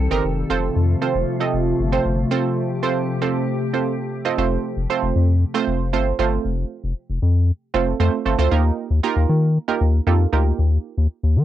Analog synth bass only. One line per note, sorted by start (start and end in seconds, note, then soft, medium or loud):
0.11 0.21 G1 medium
0.24 0.44 F1 loud
0.50 0.69 F1 loud
0.76 0.95 F2 loud
1.15 1.24 F1 loud
1.54 1.73 F1 loud
1.79 1.99 G1 medium
2.05 2.25 G1 medium
4.38 4.57 F1 loud
4.77 4.86 F1 loud
5.03 5.12 F1 loud
5.16 5.45 F2 loud
5.67 5.95 F1 medium
5.93 6.13 G1 medium
6.19 6.38 G1 medium
6.45 6.64 F1 loud
6.84 6.93 F1 loud
7.10 7.19 F1 loud
7.22 7.52 F2 loud
7.74 7.94 F1 medium
8.00 8.10 F2 loud
8.26 8.36 G1 medium
8.39 8.48 D2 medium
8.52 8.71 D#2 loud
8.90 9.00 D#2 loud
9.16 9.26 D#2 loud
9.29 9.58 D#3 loud
9.81 10.00 D#2 medium
10.07 10.26 F2 loud
10.33 10.52 D2 loud
10.59 10.78 D#2 loud
10.97 11.07 D#2 loud
11.23 11.38 D#2 loud
11.36 11.45 D#3 loud